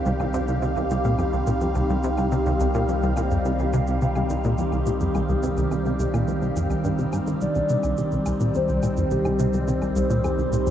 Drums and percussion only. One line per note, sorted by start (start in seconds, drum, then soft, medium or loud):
0.06 cabasa soft
0.20 cabasa soft
0.20 low woodblock medium
0.34 cabasa medium
0.48 cabasa soft
0.62 cabasa soft
0.76 cabasa soft
0.76 low woodblock soft
0.90 cabasa medium
1.04 cabasa soft
1.19 cabasa soft
1.19 low woodblock medium
1.33 cabasa soft
1.47 cabasa medium
1.61 cabasa soft
1.75 cabasa soft
1.75 low woodblock soft
1.89 cabasa soft
2.03 cabasa medium
2.17 cabasa soft
2.17 low woodblock medium
2.32 cabasa soft
2.46 cabasa soft
2.60 cabasa medium
2.74 cabasa soft
2.74 low woodblock soft
2.88 cabasa soft
3.02 cabasa soft
3.17 cabasa medium
3.17 low woodblock medium
3.31 cabasa soft
3.45 cabasa soft
3.59 cabasa soft
3.73 cabasa medium
3.73 low woodblock soft
3.87 cabasa soft
4.01 cabasa soft
4.16 cabasa soft
4.16 low woodblock medium
4.30 cabasa medium
4.44 cabasa soft
4.58 cabasa soft
4.72 cabasa soft
4.72 low woodblock soft
4.86 cabasa medium
5.01 cabasa soft
5.15 cabasa soft
5.15 low woodblock medium
5.29 cabasa soft
5.43 cabasa medium
5.57 cabasa soft
5.71 cabasa soft
5.71 low woodblock soft
5.86 cabasa soft
6.00 cabasa medium
6.14 cabasa soft
6.14 low woodblock medium
6.28 cabasa soft
6.42 cabasa soft
6.56 cabasa medium
6.70 cabasa soft
6.70 low woodblock soft
6.84 cabasa soft
6.98 cabasa soft
7.13 cabasa medium
7.13 low woodblock medium
7.27 cabasa soft
7.41 cabasa soft
7.55 cabasa soft
7.69 cabasa medium
7.83 cabasa soft
7.83 low woodblock soft
7.97 cabasa soft
8.12 cabasa soft
8.26 cabasa medium
8.26 low woodblock medium
8.40 cabasa soft
8.54 cabasa soft
8.69 cabasa soft
8.83 cabasa medium
8.83 low woodblock soft
8.97 cabasa soft
9.11 cabasa soft
9.25 cabasa soft
9.25 low woodblock medium
9.39 cabasa medium
9.53 cabasa soft
9.68 cabasa medium
9.82 cabasa soft
9.82 low woodblock soft
9.96 cabasa medium
10.10 cabasa medium
10.24 cabasa soft
10.24 low woodblock medium
10.39 cabasa soft
10.53 cabasa medium
10.67 cabasa medium